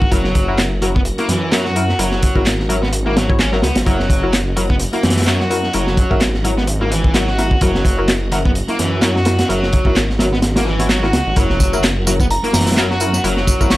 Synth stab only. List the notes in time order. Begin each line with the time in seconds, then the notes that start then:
0.11 E4 F#4 A#4
0.48 E4 F#4 A#4
0.82 E4 F#4 A#4
1.19 E4 F#4 A#4
1.52 E4 F#4 A#4
1.76 E4 F#4 A#4
1.99 E4 F#4 A#4
2.36 E4 F#4 A#4
2.69 E4 F#4 A#4
3.06 E4 F#4 A#4
3.29 E4 F#4 C#5
3.53 E4 F#4 A#4
3.86 E4 F#4 A#4
4.23 E4 F#4 A#4
4.57 E4 F#4 A#4
4.93 E4 F#4 A#4
5.27 E4 F#4 A#4
5.50 E4 F#4 A#4
5.74 E4 F#4 A#4
6.11 E4 F#4 A#4
6.44 E4 F#4 A#4
6.81 E4 F#4 A#4
7.15 E4 F#4 A#4
7.38 E4 F#4 A#4
7.62 E4 F#4 A#4
7.98 E4 F#4 A#4
8.32 E4 F#4 A#4
8.69 E4 F#4 A#4
9.02 E4 F#4 A#4
9.26 E4 F#4 A#4
9.49 E4 F#4 A#4
9.86 E4 F#4 A#4
10.19 E4 F#4 A#4
10.56 E4 F#4 A#4
10.80 E4 F#4 C#5
11.03 E4 F#4 A#4
11.37 E4 F#4 A#4
11.73 E4 F#4 A#4
12.07 E4 F#4 A#4
12.44 E4 F#4 A#4
12.77 E4 F#4 A#4
13.01 E4 F#4 A#4
13.24 E4 F#4 A#4
13.61 E4 F#4 A#4